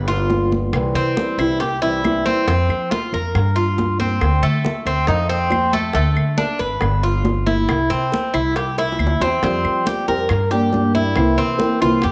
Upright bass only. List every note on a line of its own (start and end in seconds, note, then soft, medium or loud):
0.00 0.69 G1 loud
0.73 0.94 C2 medium
0.94 1.15 C3 medium
1.38 2.21 C2 medium
2.48 2.68 F2 medium
2.69 2.90 F3 medium
3.13 3.33 F2 medium
3.35 4.18 G2 medium
4.21 4.42 D2 medium
4.42 4.63 D3 medium
4.85 5.07 D2 medium
5.08 5.91 F2 loud
5.94 6.15 D2 loud
6.17 6.38 D3 medium
6.60 6.81 G#1 medium
6.82 7.65 G1 loud
7.69 7.90 C2 medium
7.91 8.11 C3 medium
8.34 8.96 C2 medium
8.99 9.19 D2 medium
9.20 9.40 E2 medium
9.43 9.63 F2 medium
9.64 9.85 F3 medium
10.08 10.29 F2 medium
10.30 11.13 G2 medium
11.16 11.37 C2 medium
11.38 11.59 C3 medium
11.82 12.02 C2 medium
12.04 12.12 F2 medium